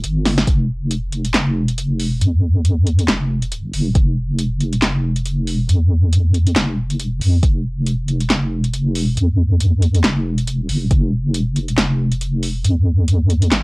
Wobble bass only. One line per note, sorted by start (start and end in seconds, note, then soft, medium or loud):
0.04 0.46 G1 loud
0.47 1.33 F1 loud
1.34 2.20 F1 loud
2.21 3.07 F2 loud
3.08 3.72 F1 loud
3.73 3.94 F1 loud
3.95 4.81 F1 loud
4.82 5.68 F1 loud
5.69 6.55 F2 loud
6.56 7.20 F1 loud
7.21 7.42 F2 loud
7.43 8.28 F1 loud
8.30 9.15 F1 loud
9.17 10.02 F2 loud
10.04 10.49 F1 loud
10.49 10.68 E1 loud
10.69 10.89 F1 loud
10.91 11.76 F1 loud
11.78 12.63 F1 loud
12.65 13.50 F2 medium
13.52 13.63 G#1 loud